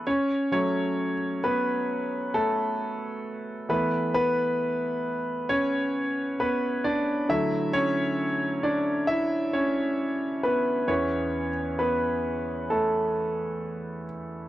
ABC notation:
X:1
M:4/4
L:1/8
Q:1/4=66
K:A
V:1 name="Grand piano"
[Cc] c2 [B,B]2 [A,A]3 | B [B,B]3 [Cc]2 [B,B] [Dd] | [Ee] [Cc]2 [Dd] [Ee] [Cc]2 [B,B] | [Cc]2 [B,B]2 [A,A]3 z |]
V:2 name="Grand piano" clef=bass
z [F,A,C] z6 | [E,A,B,] z6 z | [D,F,A,]8 | [E,,E,B,] z6 z |]